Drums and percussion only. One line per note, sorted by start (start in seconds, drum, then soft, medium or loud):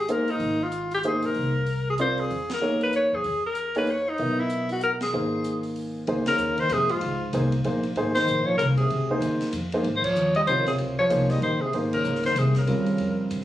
0.09 closed hi-hat soft
0.28 open hi-hat soft
0.40 open hi-hat soft
0.72 closed hi-hat soft
0.91 open hi-hat soft
1.03 closed hi-hat soft
1.22 open hi-hat soft
1.35 open hi-hat soft
1.66 open hi-hat soft
1.98 closed hi-hat soft
2.18 open hi-hat soft
2.31 open hi-hat soft
2.49 snare medium
2.49 ride medium
2.81 open hi-hat soft
2.93 closed hi-hat soft
3.24 open hi-hat soft
3.55 closed hi-hat soft
3.75 open hi-hat soft
3.87 open hi-hat soft
4.18 open hi-hat soft
4.50 closed hi-hat soft
4.69 open hi-hat soft
4.81 closed hi-hat soft
5.01 snare medium
5.01 ride medium
5.44 closed hi-hat soft
5.63 open hi-hat soft
5.76 open hi-hat soft
6.07 ride soft
6.26 snare medium
6.26 ride medium
6.38 hi-hat pedal medium
6.58 ride soft
6.69 hi-hat pedal soft
6.69 ride medium
6.89 ride soft
7.01 ride medium
7.33 hi-hat pedal medium
7.33 ride medium
7.52 ride soft
7.64 ride medium
7.83 ride soft
7.96 ride soft
8.15 snare medium
8.15 ride medium
8.27 hi-hat pedal medium
8.59 hi-hat pedal medium
8.59 ride medium
8.77 ride soft
8.90 ride soft
9.22 hi-hat pedal medium
9.22 ride medium
9.41 snare soft
9.41 ride soft
9.53 hi-hat pedal soft
9.53 ride medium
9.72 ride soft
9.84 ride soft
10.04 kick medium
10.04 crash medium
10.15 hi-hat pedal soft
10.35 ride soft
10.47 hi-hat pedal soft
10.47 ride medium
10.66 snare soft
10.66 ride soft
10.78 ride medium
11.10 hi-hat pedal medium
11.10 ride medium
11.30 snare soft
11.30 ride soft
11.42 ride soft
11.73 ride medium
11.93 kick medium
11.93 crash medium
12.04 hi-hat pedal medium
12.15 snare soft
12.23 snare soft
12.23 ride soft
12.36 hi-hat pedal medium
12.36 ride medium
12.55 snare soft
12.55 ride soft
12.67 ride medium
12.86 ride soft
12.98 ride medium
13.31 hi-hat pedal medium
13.31 ride medium